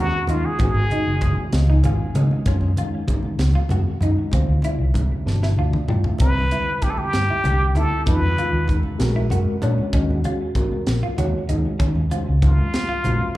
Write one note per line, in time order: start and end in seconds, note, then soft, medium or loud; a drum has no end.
0.00 0.11 D#2 medium
0.00 0.21 D#3 medium
0.00 0.22 G#3 medium
0.00 0.22 C#4 medium
0.00 0.18 F#4 medium
0.00 0.32 F#4 medium
0.00 0.22 G#4 medium
0.27 0.42 D#2 medium
0.27 0.58 D#3 medium
0.27 0.59 G#3 medium
0.27 0.59 C#4 medium
0.27 0.49 D#4 medium
0.27 0.60 F4 medium
0.27 0.47 F4 medium
0.27 closed hi-hat medium
0.27 low conga medium
0.43 0.60 G#4 medium
0.43 high conga medium
0.43 low conga soft
0.59 0.74 G#1 medium
0.59 0.84 D#3 medium
0.59 0.85 G#3 medium
0.59 0.80 B3 medium
0.59 0.85 C#4 medium
0.59 0.85 F#4 medium
0.59 1.50 G#4 medium
0.59 kick loud
0.59 closed hi-hat medium
0.59 muted conga medium
0.74 0.89 G#1 medium
0.74 low conga medium
0.90 1.15 D#3 medium
0.90 1.15 G#3 medium
0.90 1.15 C#4 medium
0.90 1.11 D#4 medium
0.90 1.16 F#4 medium
0.90 closed hi-hat medium
0.90 high conga medium
1.05 1.34 F#1 medium
1.21 1.51 D#3 medium
1.21 1.52 G#3 medium
1.21 1.52 C#4 soft
1.21 1.54 F#4 medium
1.21 kick medium
1.21 closed hi-hat medium
1.21 muted conga loud
1.21 low conga medium
1.36 high conga medium
1.52 1.81 C#2 medium
1.52 1.77 D#3 medium
1.52 1.78 G#3 medium
1.52 1.78 C#4 medium
1.52 1.78 F4 medium
1.52 snare loud
1.52 closed hi-hat medium
1.52 low conga soft
1.68 1.79 D#4 medium
1.68 low conga medium
1.84 1.98 G#1 medium
1.84 2.08 D#3 medium
1.84 2.08 G#3 medium
1.84 2.09 C#4 medium
1.84 2.04 F4 medium
1.84 2.09 F4 medium
1.84 2.14 G#5 medium
1.84 closed hi-hat medium
1.84 muted conga medium
1.84 high conga medium
1.99 muted fingered electric bass stroke soft
2.15 2.29 C#3 medium
2.15 2.45 D#3 medium
2.15 2.46 G#3 medium
2.15 2.35 C#4 medium
2.15 2.46 C#4 medium
2.15 2.47 D#4 medium
2.15 2.45 D#5 medium
2.15 closed hi-hat medium
2.15 low conga loud
2.31 muted fingered electric bass stroke soft
2.31 high conga medium
2.31 low conga soft
2.46 2.75 F#2 medium
2.46 2.71 D#3 medium
2.46 2.72 G#3 medium
2.46 2.72 C#4 medium
2.46 2.67 C#4 medium
2.46 2.72 F4 medium
2.46 kick medium
2.46 closed hi-hat medium
2.46 muted conga medium
2.61 low conga medium
2.77 3.01 D#3 medium
2.77 3.02 G#3 medium
2.77 3.02 C#4 medium
2.77 3.02 D#4 medium
2.77 2.98 F4 medium
2.77 closed hi-hat medium
2.77 high conga medium
3.08 3.56 D#3 medium
3.08 3.56 G#3 medium
3.08 3.57 C#4 medium
3.08 3.57 D#4 medium
3.08 kick medium
3.08 closed hi-hat medium
3.08 muted conga medium
3.08 low conga medium
3.23 high conga medium
3.38 3.53 C#2 medium
3.38 snare medium
3.38 closed hi-hat medium
3.38 low conga soft
3.53 3.65 F4 medium
3.53 muted fingered electric bass stroke soft
3.53 low conga medium
3.69 3.85 F#2 medium
3.69 3.95 D#3 medium
3.69 3.95 G#3 medium
3.69 3.95 C#4 medium
3.69 3.91 F#4 medium
3.69 3.95 G#4 medium
3.69 closed hi-hat medium
3.69 muted conga medium
3.69 high conga medium
4.01 4.16 F#2 medium
4.01 4.33 D#3 medium
4.01 4.34 G#3 medium
4.01 4.34 C#4 medium
4.01 4.22 D#4 medium
4.01 4.34 D#4 medium
4.01 closed hi-hat medium
4.01 low conga medium
4.17 high conga medium
4.17 low conga soft
4.32 4.47 D2 medium
4.32 4.58 D3 medium
4.32 4.58 G3 medium
4.32 4.58 C4 medium
4.32 4.53 C4 medium
4.32 4.59 F4 medium
4.32 kick loud
4.32 closed hi-hat medium
4.32 muted conga medium
4.47 4.63 D2 medium
4.47 low conga medium
4.62 4.88 D3 medium
4.62 4.88 G3 medium
4.62 4.88 C4 medium
4.62 4.84 E4 medium
4.62 4.89 F4 medium
4.62 closed hi-hat medium
4.62 high conga medium
4.78 5.08 C2 medium
4.78 low conga soft
4.94 5.26 D3 medium
4.94 5.26 G3 medium
4.94 5.26 C4 medium
4.94 5.25 D4 medium
4.94 kick medium
4.94 closed hi-hat medium
4.94 muted conga medium
4.94 low conga medium
5.10 high conga medium
5.26 5.55 G1 medium
5.26 5.51 B2 medium
5.26 5.51 E3 medium
5.26 5.52 A3 medium
5.26 5.52 D4 medium
5.26 snare medium
5.43 5.53 E4 medium
5.43 snare medium
5.57 5.72 D2 medium
5.57 5.81 B2 medium
5.57 5.81 E3 medium
5.57 5.82 A3 medium
5.57 5.82 D4 medium
5.57 5.78 F4 medium
5.57 5.87 D5 medium
5.57 high conga soft
5.73 muted fingered electric bass stroke soft
5.73 mid tom medium
5.73 high conga medium
5.88 6.02 G2 medium
5.88 6.20 B2 medium
5.88 6.20 A3 medium
5.88 6.09 D4 medium
5.88 6.20 E4 medium
5.88 6.20 F4 medium
5.88 6.18 G5 medium
5.88 mid tom medium
5.88 low conga medium
6.04 muted fingered electric bass stroke soft
6.04 floor tom medium
6.04 low conga medium
6.18 6.49 C2 medium
6.18 6.45 D3 medium
6.18 6.45 G3 medium
6.18 6.46 C4 medium
6.18 6.41 C4 medium
6.18 6.46 E4 medium
6.18 6.84 B4 loud
6.18 kick loud
6.18 closed hi-hat medium
6.18 muted conga medium
6.35 low conga medium
6.50 6.75 D3 medium
6.50 6.75 G3 medium
6.50 6.75 C4 medium
6.50 6.71 E4 medium
6.50 6.76 E4 medium
6.50 closed hi-hat medium
6.50 high conga medium
6.82 7.30 D3 medium
6.82 7.30 G3 soft
6.82 7.31 C4 medium
6.82 7.31 E4 medium
6.82 6.91 G4 medium
6.82 kick medium
6.82 closed hi-hat medium
6.82 low conga medium
6.90 6.99 A4 medium
6.97 7.79 G4 medium
6.97 high conga medium
7.13 7.28 G2 medium
7.13 snare medium
7.13 closed hi-hat medium
7.13 low conga soft
7.29 7.40 E4 medium
7.29 muted fingered electric bass stroke soft
7.29 low conga medium
7.44 7.75 C2 medium
7.44 7.68 D3 medium
7.44 7.68 G3 medium
7.44 7.69 C4 medium
7.44 7.69 D4 medium
7.44 7.65 G4 medium
7.44 closed hi-hat medium
7.44 muted conga medium
7.44 high conga medium
7.75 7.89 D2 medium
7.75 8.07 D3 medium
7.75 8.07 G3 soft
7.75 8.07 C4 medium
7.75 7.96 E4 medium
7.75 8.08 E4 medium
7.75 8.10 A4 medium
7.75 closed hi-hat medium
7.75 low conga medium
7.91 low conga soft
8.06 8.21 F2 medium
8.06 8.32 D#3 medium
8.06 8.32 G#3 medium
8.06 8.32 C#4 medium
8.06 8.27 D#4 medium
8.06 8.33 F4 medium
8.06 8.78 B4 medium
8.06 kick loud
8.06 closed hi-hat medium
8.06 muted conga medium
8.21 8.36 F2 medium
8.21 low conga medium
8.37 8.62 D#3 medium
8.37 8.62 G#3 medium
8.37 8.62 C#4 medium
8.37 8.58 F4 medium
8.37 8.63 F4 medium
8.37 closed hi-hat medium
8.37 high conga medium
8.53 8.82 D#2 medium
8.68 9.00 D#3 medium
8.68 8.97 G#3 medium
8.68 8.98 C#4 medium
8.68 9.01 D#4 medium
8.68 kick medium
8.68 closed hi-hat medium
8.68 muted conga medium
8.68 low conga medium
8.83 high conga medium
8.99 9.28 A#1 medium
8.99 9.24 G#3 medium
8.99 9.25 C#4 medium
8.99 9.25 F#4 medium
8.99 9.25 A#4 loud
8.99 snare loud
8.99 closed hi-hat medium
9.15 9.26 E4 medium
9.15 low conga medium
9.30 9.45 F#2 medium
9.30 9.55 G#3 medium
9.30 9.55 C#4 medium
9.30 9.51 F#4 medium
9.30 9.55 F#4 medium
9.30 9.56 A#4 medium
9.30 closed hi-hat medium
9.30 muted conga medium
9.30 high conga medium
9.47 muted fingered electric bass stroke soft
9.62 9.77 A#2 medium
9.62 9.92 G#3 medium
9.62 9.92 C#4 medium
9.62 9.82 D4 medium
9.62 9.93 F#4 medium
9.62 9.94 C#5 medium
9.62 closed hi-hat medium
9.62 low conga medium
9.78 muted fingered electric bass stroke soft
9.78 high conga medium
9.78 low conga soft
9.93 10.22 D#2 medium
9.93 10.18 G#3 medium
9.93 10.18 C#4 medium
9.93 10.13 C#4 medium
9.93 10.19 F#4 medium
9.93 10.19 A#4 loud
9.93 kick loud
9.93 closed hi-hat medium
9.93 muted conga medium
10.10 low conga medium
10.24 10.48 G#3 medium
10.24 10.48 C#4 medium
10.24 10.45 F4 medium
10.24 10.49 F#4 medium
10.24 10.49 C#5 medium
10.24 closed hi-hat medium
10.24 high conga medium
10.55 11.03 G#3 medium
10.55 11.03 C#4 medium
10.55 11.04 F#4 medium
10.55 11.04 A#4 medium
10.55 kick medium
10.55 closed hi-hat medium
10.55 muted conga medium
10.55 low conga medium
10.72 high conga medium
10.87 11.01 A#1 medium
10.87 snare loud
10.87 closed hi-hat medium
10.87 low conga soft
11.02 11.13 F4 medium
11.02 muted fingered electric bass stroke soft
11.02 low conga medium
11.17 11.33 D#2 medium
11.17 11.41 G#3 medium
11.17 11.42 C#4 medium
11.17 11.42 F#4 medium
11.17 11.38 F#4 medium
11.17 11.42 C#5 medium
11.17 closed hi-hat medium
11.17 muted conga medium
11.17 high conga medium
11.49 11.64 D#2 medium
11.49 11.97 G#3 medium
11.49 11.97 C#4 medium
11.49 11.69 D#4 medium
11.49 11.97 F#4 medium
11.49 11.98 G#4 medium
11.49 closed hi-hat medium
11.49 low conga medium
11.65 high conga medium
11.65 low conga soft
11.79 11.94 D#3 medium
11.79 11.99 C#4 medium
11.79 kick loud
11.79 closed hi-hat medium
11.79 muted conga medium
11.95 12.10 D#2 medium
11.95 low conga medium
12.11 12.36 G#3 medium
12.11 12.36 C#4 medium
12.11 12.31 F4 medium
12.11 12.36 F#4 medium
12.11 12.36 C5 medium
12.11 closed hi-hat medium
12.11 high conga medium
12.11 low conga soft
12.28 12.57 C#2 medium
12.42 12.91 F#3 medium
12.42 12.91 G#3 medium
12.42 12.91 C#4 medium
12.42 13.37 F4 medium
12.42 12.92 A#4 medium
12.42 kick medium
12.42 closed hi-hat medium
12.42 muted conga medium
12.42 low conga medium
12.58 high conga medium
12.74 snare loud
12.74 closed hi-hat medium
12.89 12.99 F4 medium
12.89 low conga medium
13.04 13.19 A#1 medium
13.04 13.24 F#3 medium
13.04 13.29 G#3 medium
13.04 13.29 C#4 medium
13.04 13.29 F#4 medium
13.04 13.29 A#4 medium
13.04 13.37 C5 medium
13.04 closed hi-hat medium
13.04 muted conga medium
13.04 high conga medium
13.20 muted fingered electric bass stroke soft
13.20 low conga soft